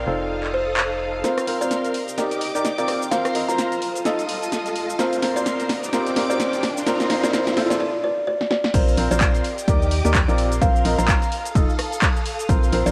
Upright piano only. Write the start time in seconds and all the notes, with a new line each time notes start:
0.07 D#4 F4 A4 C5
1.24 C4 F4 A#4 C5
1.47 C4 F4 A#4 C5
1.61 C4 F4 A#4 C5
2.18 D#4 G4 A#4 D5
2.55 D#4 G4 A#4 D5
2.78 C4 F4 A#4 D5
3.12 C4 F4 A#4 C5
3.35 C4 F4 A#4 D#5
3.49 C4 F4 A#4 C5
4.05 D#4 F4 A4 D#5
4.99 C4 F4 A#4 C5
5.22 C4 F4 A#4 C5
5.36 C4 F4 A#4 C5
5.93 C4 F4 A#4 C5
6.16 C4 F4 A#4 C5
6.30 C4 F4 A#4 C5
6.87 C4 F4 A#4 C5
7.10 C4 F4 A#4 C5
7.24 C4 F4 A#4 C5
7.33 C4 F4 A#4 C5
7.57 C4 F4 A4 C5
7.71 C4 F4 A4 C5
8.74 C4 F4 A#4 C5
8.97 C4 F4 A#4 C5
9.11 C4 F4 A#4 C5
9.68 D#4 G4 A#4 D5
10.05 D#4 G4 A#4 D5
10.28 C4 F4 A#4 D5
10.62 C4 F4 A#4 C5
10.85 C4 F4 A#4 D#5
10.99 C4 F4 A#4 C5
11.55 D#4 F4 A4 D#5
12.49 C4 F4 A#4 C5
12.73 C4 F4 A#4 C5
12.86 C4 F4 A#4 C5